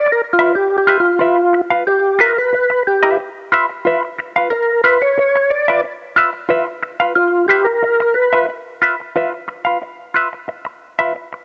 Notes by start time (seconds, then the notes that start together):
Already playing: D5
0.06 muted clean electric guitar stroke
0.12 A#4
0.33 F4
0.39 F4 B4 E5
0.54 G4, muted clean electric guitar stroke
0.78 G4
0.87 F4 B4 E5
1.00 F4
1.04 muted clean electric guitar stroke
1.19 F4 B4 E5
1.38 muted clean electric guitar stroke
1.53 muted clean electric guitar stroke
1.70 F4 B4 F5
1.87 G4, muted clean electric guitar stroke
2.19 F4 A#4 B4 E5
2.37 B4, muted clean electric guitar stroke
2.53 muted clean electric guitar stroke
2.70 muted clean electric guitar stroke
2.87 G4
3.03 F4 B4 E5
3.19 muted clean electric guitar stroke
3.52 F4 B4 E5
3.69 muted clean electric guitar stroke
3.85 F4 B4 E5
4.03 muted clean electric guitar stroke
4.18 muted clean electric guitar stroke
4.36 F4 B4 F5
4.50 A#4, muted clean electric guitar stroke
4.83 F4 B4 E5
5.02 C#5, muted clean electric guitar stroke
5.18 muted clean electric guitar stroke
5.36 muted clean electric guitar stroke
5.50 D5
5.68 F4 B4 E5
5.84 muted clean electric guitar stroke
6.16 F4 B4 E5
6.33 muted clean electric guitar stroke
6.49 F4 B4 E5
6.67 muted clean electric guitar stroke
6.83 muted clean electric guitar stroke
7.00 F4 B4 F5
7.15 F4, muted clean electric guitar stroke
7.48 F4 G4 B4 E5
7.64 A#4, muted clean electric guitar stroke
7.83 muted clean electric guitar stroke
8.00 muted clean electric guitar stroke
8.14 B4
8.33 F4 B4 E5
8.49 muted clean electric guitar stroke
8.82 F4 B4 E5
9.00 muted clean electric guitar stroke
9.16 F4 B4 E5
9.33 muted clean electric guitar stroke
9.48 muted clean electric guitar stroke
9.65 F4 B4 F5
9.82 muted clean electric guitar stroke
10.14 F4 B4 E5
10.33 muted clean electric guitar stroke
10.48 muted clean electric guitar stroke
10.65 muted clean electric guitar stroke
10.99 F4 B4 E5
11.15 muted clean electric guitar stroke
11.33 muted clean electric guitar stroke